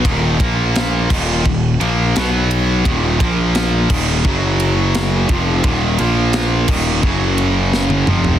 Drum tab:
CC |------x---------|------x---------|------x---------|
RD |x-x-x-----x-x-x-|x-x-x-----x-x-x-|x-x-x-----x-----|
SD |----o-------o---|----o-------o---|----o-------o---|
T1 |----------------|----------------|-------------o--|
T2 |----------------|----------------|--------------o-|
FT |----------------|----------------|---------------o|
BD |o-o---o-o-------|o-o---o-o-----o-|o-----o-o-------|